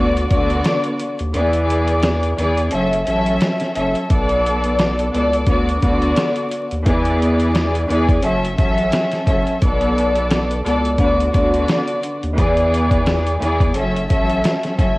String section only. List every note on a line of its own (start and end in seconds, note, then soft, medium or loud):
0.00 0.28 D3 medium
0.00 0.28 B3 medium
0.00 0.29 F#4 medium
0.00 0.29 D5 loud
0.29 1.11 D3 loud
0.29 1.11 B3 medium
0.29 1.12 F#4 medium
0.29 1.12 D5 loud
1.33 2.30 E3 loud
1.33 2.30 B3 loud
1.33 2.31 G#4 medium
1.33 2.31 D5 loud
2.36 2.72 E3 medium
2.36 2.72 B3 medium
2.36 2.73 G#4 medium
2.36 2.73 D5 loud
2.71 3.03 F#3 loud
2.71 3.04 C#4 medium
2.71 3.05 A4 medium
2.71 3.05 E5 loud
3.05 3.70 F#3 loud
3.05 3.70 C#4 medium
3.05 3.71 A4 medium
3.05 3.71 E5 loud
3.74 4.07 F#3 medium
3.74 4.08 C#4 medium
3.74 4.08 A4 medium
3.74 4.09 E5 medium
4.10 5.06 B2 loud
4.10 5.07 B3 loud
4.10 5.07 A4 medium
4.10 5.08 D5 loud
5.11 5.47 B2 loud
5.11 5.46 B3 medium
5.11 5.48 A4 medium
5.11 5.48 D5 loud
5.46 5.79 D3 loud
5.46 5.80 B3 medium
5.46 5.80 F#4 medium
5.46 5.81 D5 loud
5.81 6.63 D3 loud
5.81 6.63 B3 medium
5.81 6.64 F#4 medium
5.81 6.64 D5 loud
6.85 7.82 E3 loud
6.85 7.82 B3 loud
6.85 7.83 G#4 medium
6.85 7.83 D5 loud
7.88 8.23 E3 medium
7.88 8.24 B3 medium
7.88 8.24 G#4 loud
7.88 8.25 D5 loud
8.22 8.55 F#3 loud
8.22 8.56 C#4 medium
8.22 8.56 A4 medium
8.22 8.57 E5 loud
8.56 9.22 F#3 loud
8.56 9.22 C#4 medium
8.56 9.22 A4 medium
8.56 9.23 E5 loud
9.26 9.59 F#3 medium
9.26 9.59 C#4 medium
9.26 9.60 A4 medium
9.26 9.60 E5 medium
9.62 10.58 B2 loud
9.62 10.59 B3 loud
9.62 10.59 A4 loud
9.62 10.60 D5 loud
10.63 10.99 B2 loud
10.63 10.98 B3 medium
10.63 11.00 A4 medium
10.63 10.99 D5 loud
10.98 11.31 D3 loud
10.98 11.32 B3 medium
10.98 11.32 F#4 medium
10.98 11.32 D5 loud
11.33 12.14 D3 loud
11.33 12.15 B3 medium
11.33 12.15 F#4 medium
11.33 12.16 D5 loud
12.36 13.33 E3 loud
12.36 13.34 B3 loud
12.36 13.34 G#4 medium
12.36 13.35 D5 loud
13.40 13.75 E3 loud
13.40 13.76 B3 medium
13.40 13.76 G#4 loud
13.40 13.76 D5 loud
13.74 14.07 F#3 loud
13.74 14.07 C#4 medium
13.74 14.08 A4 medium
13.74 14.08 E5 loud
14.08 14.73 F#3 loud
14.08 14.74 C#4 medium
14.08 14.74 A4 medium
14.08 14.75 E5 loud
14.78 14.98 F#3 medium
14.78 14.98 C#4 medium
14.78 14.98 A4 medium
14.78 14.98 E5 medium